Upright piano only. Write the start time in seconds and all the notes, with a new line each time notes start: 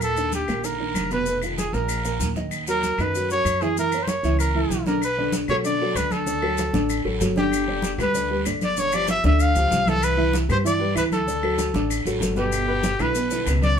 Already playing: A#2 A#3 A#4
0.17 D#3 D4 D#4
0.48 A#2 A#3 A#4
0.64 D3 D4 D#4
0.80 D#3 D4 D#4
1.11 B2 B3 B4
1.27 B2 B3 B4
1.43 D#3 D#4 F4
1.73 A#2 A#3 A#4
2.04 A#2 A#3 A#4
2.36 D#3 D#4 D#5
2.68 F#3 F#4 A#4
3.00 D#3 D#4 D#5
3.15 F#3 F#4 A#4
3.32 F#3 F#4 A#4
3.62 E3 E4 E5
3.78 E3 E4 E5
3.94 A#3 A#4 C#5
4.24 E3 E4 E5
4.55 E3 E4 E5
4.87 D3 D4 D5
5.18 D3 D4 D5
5.50 F#3 F#4 A4
5.65 D3 D4
5.81 F#3 F#4 A4
5.96 D3 D4 D5
6.26 D3 D4 D5
6.42 F#3 F#4 A4
6.73 D3 D4 D5
7.04 F#3 F#4 A4
7.21 F#3 F#4 A4
7.36 D3 D4 D5
7.68 D3 D4 D5
7.99 G3 G4 B4
8.14 D3 D4 D5
8.30 G3 G4 B4
8.45 D3 D4 D5
8.78 D3 D4 D5
8.93 F3 F4 G4
9.24 D3 D4 D5
9.56 F3 F4 G4
9.71 F3 F4 G4
9.86 E3 E4 E5
10.17 E3 E4 E5
10.49 G3 G4 B4
10.64 E3 E4 E5
10.79 G3 G4 B4
10.95 E3 E4 E5
11.27 D3 D4 D5
11.43 F#3 F#4 A4
11.75 D3 D4 D5
12.06 F#3 F#4 A4
12.21 F#3 F#4 A4
12.36 B2 B3 B4
12.68 B2 B3 B4
12.99 D3 D4 E4
13.15 B2 B3 B4
13.31 D3 D4 E4
13.47 B2 B3 B4